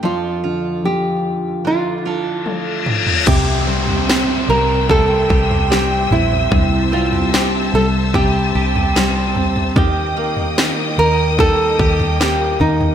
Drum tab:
CC |----------------|x---------------|----------------|----------------|
SD |----------------|----o-------o---|----o-------o---|----o-------o---|
T1 |------------o---|----------------|----------------|----------------|
T2 |--------------o-|----------------|----------------|----------------|
FT |---------------o|o--o----o--o--oo|o--o----o--o--oo|o--o----o--o--oo|
BD |----------------|o-------o-o-----|o-------o-------|o-------o-o-----|